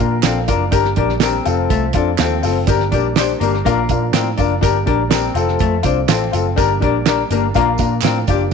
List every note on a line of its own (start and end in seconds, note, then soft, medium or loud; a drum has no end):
0.00 0.20 A#2 medium
0.00 0.71 F3 medium
0.00 0.21 A#3 medium
0.00 1.44 A#3 medium
0.00 0.12 D4 medium
0.00 1.43 D4 medium
0.00 0.12 F4 medium
0.00 0.12 A#4 medium
0.00 0.20 G5 medium
0.23 0.45 A#1 medium
0.23 0.39 C4 medium
0.23 0.36 D4 medium
0.23 0.36 F4 medium
0.23 0.37 A4 medium
0.23 0.70 F5 medium
0.23 snare loud
0.23 clap medium
0.23 closed hi-hat medium
0.23 tambourine medium
0.48 0.69 F#1 medium
0.48 0.60 D4 medium
0.48 0.63 D4 medium
0.48 0.61 F4 medium
0.48 0.61 A#4 loud
0.48 kick loud
0.48 closed hi-hat medium
0.48 tambourine medium
0.71 0.94 G1 loud
0.71 1.45 G3 medium
0.71 0.84 D4 loud
0.71 0.85 G4 loud
0.71 0.85 A#4 loud
0.71 kick loud
0.71 closed hi-hat medium
0.71 tambourine medium
0.85 snare soft
0.96 1.39 A#1 medium
0.96 1.09 D4 medium
0.96 1.13 D4 medium
0.96 1.10 G4 medium
0.96 1.10 A#4 medium
0.96 kick loud
0.96 closed hi-hat medium
1.09 snare soft
1.20 1.68 C4 medium
1.20 1.33 D4 medium
1.20 1.34 G4 medium
1.20 1.34 A#4 loud
1.20 snare loud
1.20 clap medium
1.20 closed hi-hat medium
1.20 tambourine medium
1.45 1.67 F1 medium
1.45 2.66 F3 medium
1.45 2.67 A3 medium
1.45 1.85 C4 medium
1.45 2.66 C4 medium
1.45 1.85 F4 medium
1.45 1.85 A4 medium
1.45 closed hi-hat medium
1.45 tambourine medium
1.70 1.91 C2 loud
1.70 1.85 A3 medium
1.70 kick medium
1.70 closed hi-hat medium
1.70 tambourine soft
1.93 2.15 F2 medium
1.93 2.07 C4 medium
1.93 2.10 D4 medium
1.93 2.07 F4 medium
1.93 2.07 A4 medium
1.93 kick medium
1.93 closed hi-hat loud
1.93 tambourine soft
2.18 2.40 D#2 medium
2.18 2.31 C4 medium
2.18 2.65 C4 medium
2.18 2.32 F4 medium
2.18 2.32 A4 medium
2.18 snare loud
2.18 clap medium
2.18 closed hi-hat medium
2.18 tambourine medium
2.43 2.64 F#1 medium
2.43 2.55 C4 medium
2.43 2.56 F4 medium
2.43 2.56 A4 loud
2.43 open hi-hat medium
2.43 tambourine medium
2.66 2.93 G1 loud
2.66 3.64 G3 medium
2.66 4.60 A#3 medium
2.66 3.62 D4 medium
2.66 2.80 D4 loud
2.66 2.80 G4 loud
2.66 2.81 A#4 loud
2.66 kick loud
2.66 closed hi-hat medium
2.66 tambourine medium
2.80 snare soft
2.92 3.34 A#1 medium
2.92 3.06 D4 medium
2.92 3.05 D4 medium
2.92 3.05 G4 medium
2.92 3.06 A#4 medium
2.92 kick medium
2.92 closed hi-hat medium
2.92 tambourine soft
3.16 3.31 D4 medium
3.16 3.29 D4 medium
3.16 3.29 G4 medium
3.16 3.30 C5 loud
3.16 snare loud
3.16 clap medium
3.16 closed hi-hat medium
3.16 tambourine medium
3.40 3.62 G1 medium
3.40 3.55 A#3 medium
3.40 3.53 D4 medium
3.40 3.54 G4 medium
3.40 3.54 A#4 medium
3.40 closed hi-hat medium
3.40 tambourine soft
3.54 snare soft
3.63 3.86 A#1 loud
3.63 4.61 F3 medium
3.63 4.11 A#3 medium
3.63 5.33 D4 medium
3.63 3.78 D4 loud
3.63 3.78 F4 medium
3.63 3.78 A#4 loud
3.63 kick medium
3.63 closed hi-hat medium
3.63 tambourine soft
3.89 4.10 A#2 loud
3.89 4.02 D4 medium
3.89 4.02 F4 medium
3.89 4.03 A#4 medium
3.89 kick medium
3.89 closed hi-hat medium
3.89 tambourine medium
4.13 4.34 A2 medium
4.13 4.28 C4 medium
4.13 4.26 D4 medium
4.13 4.26 F4 medium
4.13 4.27 A#4 medium
4.13 snare loud
4.13 clap medium
4.13 closed hi-hat medium
4.13 tambourine medium
4.38 4.59 F#1 medium
4.38 4.52 D4 medium
4.38 4.50 D4 medium
4.38 4.51 F4 medium
4.38 4.51 A#4 medium
4.38 kick loud
4.38 closed hi-hat medium
4.38 tambourine medium
4.61 4.83 G1 loud
4.61 5.35 G3 medium
4.61 5.35 A#3 medium
4.61 4.74 D4 loud
4.61 4.75 G4 medium
4.61 4.75 A#4 loud
4.61 kick loud
4.61 closed hi-hat loud
4.61 tambourine medium
4.86 5.29 A#1 medium
4.86 4.99 D4 medium
4.86 5.01 D4 medium
4.86 4.99 G4 medium
4.86 4.99 A#4 medium
4.86 kick loud
4.86 closed hi-hat medium
5.10 5.57 C4 medium
5.10 5.23 D4 medium
5.10 5.23 G4 medium
5.10 5.23 A#4 medium
5.10 snare loud
5.10 clap medium
5.10 closed hi-hat loud
5.10 tambourine medium
5.34 5.56 F1 loud
5.34 6.55 F3 medium
5.34 6.56 A3 medium
5.34 5.74 C4 medium
5.34 6.56 C4 medium
5.34 5.74 F4 medium
5.34 5.75 A4 loud
5.34 closed hi-hat medium
5.34 tambourine medium
5.48 snare soft
5.59 5.81 F2 loud
5.59 5.75 A3 medium
5.59 kick medium
5.59 closed hi-hat medium
5.59 tambourine soft
5.83 6.05 C2 medium
5.83 5.96 C4 medium
5.83 5.99 D4 medium
5.83 5.96 F4 medium
5.83 5.96 C5 medium
5.83 kick medium
5.83 closed hi-hat loud
5.83 tambourine soft
6.08 6.30 A1 medium
6.08 6.20 C4 medium
6.08 6.54 C4 medium
6.08 6.21 F4 medium
6.08 6.21 A4 medium
6.08 snare loud
6.08 clap medium
6.08 closed hi-hat medium
6.08 tambourine medium
6.32 6.54 F#1 medium
6.32 6.44 C4 medium
6.32 6.45 F4 medium
6.32 6.45 A4 medium
6.32 closed hi-hat medium
6.32 tambourine medium
6.56 6.83 G1 loud
6.56 7.53 G3 medium
6.56 8.53 A#3 medium
6.56 6.69 D4 loud
6.56 8.53 D4 medium
6.56 6.69 G4 medium
6.56 6.69 A#4 loud
6.56 kick loud
6.56 closed hi-hat medium
6.56 tambourine medium
6.80 7.23 A#1 medium
6.80 6.93 D4 medium
6.80 6.97 D4 medium
6.80 6.93 G4 medium
6.80 6.94 A#4 medium
6.80 kick loud
6.80 closed hi-hat medium
7.06 7.18 D4 medium
7.06 7.22 D4 medium
7.06 7.18 G4 medium
7.06 7.19 A#4 medium
7.06 snare loud
7.06 clap medium
7.06 closed hi-hat medium
7.06 tambourine medium
7.30 7.51 G1 medium
7.30 7.46 A#3 medium
7.30 7.42 D4 medium
7.30 7.43 G4 medium
7.30 7.43 A#4 medium
7.30 closed hi-hat medium
7.30 tambourine medium
7.54 7.76 A#1 loud
7.54 8.50 F3 medium
7.54 8.00 A#3 medium
7.54 7.67 D4 loud
7.54 7.67 F4 loud
7.54 7.67 A#4 loud
7.54 kick medium
7.54 closed hi-hat medium
7.54 tambourine soft
7.78 8.00 A#2 loud
7.78 7.91 D4 medium
7.78 7.91 F4 medium
7.78 7.91 A#4 medium
7.78 kick loud
7.78 closed hi-hat medium
7.78 tambourine medium
8.02 8.24 A2 medium
8.02 8.18 C4 medium
8.02 8.15 D4 medium
8.02 8.16 F4 medium
8.02 8.16 A#4 medium
8.02 snare medium
8.02 clap medium
8.02 closed hi-hat medium
8.02 tambourine medium
8.27 8.48 F#1 medium
8.27 8.42 D4 medium
8.27 8.40 D4 medium
8.27 8.40 F4 medium
8.27 8.41 G4 medium
8.27 kick loud
8.27 closed hi-hat medium
8.27 tambourine medium
8.50 8.53 G3 medium